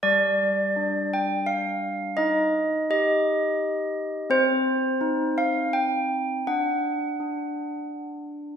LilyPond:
\new Staff \with { instrumentName = "Handbells" } { \time 3/4 \key c \dorian \tempo 4 = 84 << { d''4. g''8 f''4 | ees''4 ees''2 | c''4. f''8 g''4 | fis''2 r4 | } \\ { g4 d'2 | ees'4 g'2 | c'4 ees'2 | d'4 d'2 | } >> }